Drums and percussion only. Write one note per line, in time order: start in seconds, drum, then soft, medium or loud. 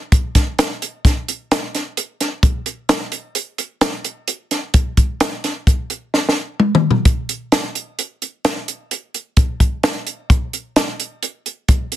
0.12 kick loud
0.12 closed hi-hat medium
0.35 kick medium
0.35 snare soft
0.35 closed hi-hat medium
0.59 snare loud
0.59 closed hi-hat loud
0.82 closed hi-hat medium
1.05 kick loud
1.05 snare soft
1.05 closed hi-hat medium
1.28 closed hi-hat medium
1.51 snare loud
1.51 closed hi-hat medium
1.75 snare soft
1.75 closed hi-hat medium
1.97 closed hi-hat medium
2.21 snare soft
2.21 closed hi-hat medium
2.43 kick loud
2.43 closed hi-hat medium
2.66 closed hi-hat medium
2.89 snare loud
2.89 closed hi-hat medium
3.12 closed hi-hat medium
3.35 closed hi-hat medium
3.58 closed hi-hat medium
3.81 snare loud
3.81 closed hi-hat medium
4.05 closed hi-hat medium
4.28 closed hi-hat loud
4.51 snare soft
4.51 closed hi-hat medium
4.74 kick loud
4.74 closed hi-hat loud
4.97 kick medium
4.97 closed hi-hat medium
5.20 snare loud
5.20 closed hi-hat loud
5.44 snare soft
5.44 closed hi-hat medium
5.67 kick loud
5.67 closed hi-hat medium
5.90 closed hi-hat medium
6.14 snare medium
6.29 snare medium
6.60 mid tom medium
6.75 mid tom loud
6.91 floor tom medium
7.05 kick loud
7.05 closed hi-hat medium
7.29 closed hi-hat medium
7.52 snare loud
7.52 closed hi-hat medium
7.75 closed hi-hat medium
7.99 closed hi-hat medium
8.22 closed hi-hat medium
8.45 snare loud
8.45 closed hi-hat medium
8.68 closed hi-hat medium
8.91 closed hi-hat medium
9.14 closed hi-hat medium
9.37 kick loud
9.37 closed hi-hat medium
9.60 kick medium
9.60 closed hi-hat medium
9.83 snare loud
9.83 closed hi-hat medium
10.07 closed hi-hat medium
10.30 kick loud
10.30 closed hi-hat medium
10.53 closed hi-hat medium
10.76 snare loud
10.76 closed hi-hat medium
11.00 closed hi-hat medium
11.23 closed hi-hat medium
11.46 closed hi-hat medium
11.68 kick loud
11.68 closed hi-hat medium
11.92 closed hi-hat medium